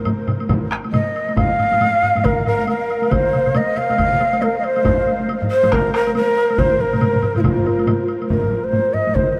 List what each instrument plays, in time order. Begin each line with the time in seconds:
0.05 taiko low-mid, taiko mid, taiko high, high woodblock
0.27 taiko low-mid, taiko mid, high woodblock
0.40 taiko high, high woodblock
0.49 taiko, taiko low-mid, taiko mid, taiko high, high woodblock
0.71 taiko rim, high woodblock
0.84 taiko high, high woodblock
0.92 shakuhachi D#5, taiko low-mid, taiko mid, taiko high, high woodblock
1.16 high woodblock
1.29 taiko high, high woodblock
1.37 shakuhachi F5, taiko, taiko low-mid, taiko high, high woodblock
1.59 taiko low-mid, taiko high, high woodblock
1.72 taiko low-mid, taiko high, high woodblock
1.81 taiko low-mid, taiko high, high woodblock
2.02 taiko low-mid, high woodblock
2.15 taiko low-mid, taiko high, high woodblock
2.24 shakuhachi A#4, taiko, taiko low-mid, taiko high, high woodblock
2.38 taiko low-mid
2.46 shakuhachi A#4, taiko low-mid, high woodblock
2.59 taiko high
2.67 shakuhachi A#4, taiko high, high woodblock
2.90 high woodblock
3.02 taiko high, high woodblock
3.11 shakuhachi C5, taiko, taiko mid, taiko high, high woodblock
3.33 taiko mid, taiko high, high woodblock
3.46 taiko mid, high woodblock
3.54 shakuhachi D#5, taiko mid, taiko high, high woodblock
3.77 shakuhachi F5, taiko mid, high woodblock
3.89 taiko mid, taiko high, high woodblock
3.98 taiko, taiko mid, taiko high, high woodblock
4.12 taiko mid
4.20 taiko mid, high woodblock
4.33 taiko high, high woodblock
4.42 shakuhachi A#4, taiko high, high woodblock
4.59 shakuhachi D#5
4.64 shakuhachi C5, high woodblock
4.76 taiko high, high woodblock
4.85 taiko, taiko low-mid, taiko high, high woodblock
5.07 taiko high, high woodblock
5.20 taiko high
5.28 taiko high, high woodblock
5.42 taiko low-mid
5.51 shakuhachi C5, high woodblock
5.63 taiko low-mid, taiko high, high woodblock
5.72 shakuhachi A#4, taiko rim, taiko, taiko high, high woodblock
5.94 shakuhachi A#4, taiko rim, high woodblock
6.07 taiko high, high woodblock
6.15 shakuhachi A#4, taiko high, high woodblock
6.37 high woodblock
6.50 taiko high, high woodblock
6.58 shakuhachi C5, taiko, taiko low-mid, taiko mid, taiko high, high woodblock
6.80 shakuhachi A#4, taiko low-mid, taiko mid
6.93 taiko low-mid, taiko mid, taiko high, high woodblock
7.01 taiko low-mid, taiko mid, taiko high, high woodblock
7.14 taiko low-mid, taiko mid
7.22 taiko low-mid, taiko mid, high woodblock
7.35 shakuhachi F4, taiko low-mid, taiko mid, taiko high, high woodblock
7.40 shakuhachi D#4, taiko, taiko low-mid, taiko mid
7.45 shakuhachi F4, taiko high, high woodblock
7.57 taiko low-mid, taiko mid
7.65 taiko low-mid, taiko mid, high woodblock
7.79 taiko high, high woodblock
7.87 taiko low-mid, taiko mid, taiko high, high woodblock
8.08 high woodblock
8.22 taiko high, high woodblock
8.29 shakuhachi A#4, taiko, taiko low-mid, taiko high
8.43 taiko low-mid
8.51 taiko low-mid
8.64 shakuhachi C5, taiko high
8.73 taiko low-mid, taiko high
8.94 shakuhachi D#5, taiko low-mid
9.07 taiko low-mid, taiko high
9.15 shakuhachi C5, taiko, taiko high
9.32 shakuhachi C5